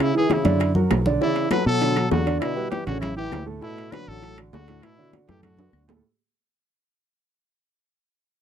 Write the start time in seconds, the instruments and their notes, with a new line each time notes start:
0.00 trombone C#3, trumpet E4, high bongo
0.14 grand piano E3 E4 G#4, trombone E3, trumpet G#4, high conga
0.29 trombone C#3, grand piano E3 E4 G#4, trumpet E4, high bongo, high conga, high timbale, low timbale
0.44 fingered electric bass F#2, grand piano D3 D4 D5, high bongo, high conga, high timbale
0.60 high bongo, high timbale, claves
0.75 grand piano F#3 F#4 A#4, high bongo, low conga
0.91 fingered electric bass B1, high bongo, low bongo, low conga, high timbale, low timbale, claves
1.06 grand piano D3 D4 D5, high bongo, low conga
1.21 trombone C#3, grand piano E3 E4 D5, trumpet E4, high bongo, high conga
1.36 high conga, high timbale
1.50 grand piano F#3 F#4 A4, trombone F#3, trumpet B4, high bongo, high conga, high timbale, low timbale, claves
1.66 fingered electric bass B2, trombone F#3, trumpet A4, high bongo, high conga
1.81 grand piano D3 D4 D5, high bongo, high conga, high timbale
1.96 grand piano F#3 F#4 A4, high bongo, high conga, high timbale, claves
2.10 fingered electric bass E2, trombone D3, trumpet F#4, high bongo, low bongo, high conga, low timbale
2.26 grand piano D3 D4 D5, high bongo, high timbale
2.40 trombone B2, trumpet E4, high bongo, high conga, high timbale, claves
2.56 grand piano G3 G4 B4, high conga
2.71 trombone E3, grand piano G3 G4 B4, trumpet G4, high bongo, high conga, high timbale, low timbale
2.86 fingered electric bass A1, grand piano C#3 C#4 C#5, trombone D3, trumpet F#4, high conga, high timbale
3.01 trombone C#3, trumpet E4, high bongo, high conga, low conga, high timbale, claves
3.16 grand piano E3 E4 G4, trombone E3, trumpet G4, high bongo, high conga
3.32 fingered electric bass D2, high bongo, low bongo, high conga, high timbale, low timbale, claves
3.46 grand piano A2 A3 A4, high bongo
3.61 grand piano A2 A3 A4, trombone B2, trumpet E4, high bongo, high conga
3.78 high conga, high timbale
3.91 grand piano D3 D4 F#4, trombone F#3, trumpet B4, high bongo, high conga, high timbale, low timbale, claves
4.07 fingered electric bass A1, trombone F#3, trumpet A4, high bongo, high conga
4.22 grand piano A2 A3 A4, high bongo, high conga, high timbale
4.38 grand piano D3 D4 F#4, high bongo, high conga, high timbale, claves
4.52 fingered electric bass D2, trombone D3, trumpet F#4, high bongo, low bongo, high conga, low timbale
4.68 grand piano A2 A3 A4, high bongo, high timbale
4.82 trombone B2, trumpet E4, high bongo, high conga, high timbale, claves
4.98 grand piano D3 D4 F#4, high conga
5.13 grand piano D3 D4 F#4, high bongo, high conga, high timbale, low timbale
5.27 fingered electric bass F#2, grand piano A2 A3 A4, trombone E3, trumpet G4, low bongo, high conga, high timbale
5.43 trombone D3, trumpet F#4, low bongo, high conga, low conga, high timbale, claves
5.57 grand piano D3 D4 F#4, low bongo, high conga, low conga, high timbale
5.73 fingered electric bass D2, high conga, claves
5.88 grand piano A2 A3 A4, low bongo, low timbale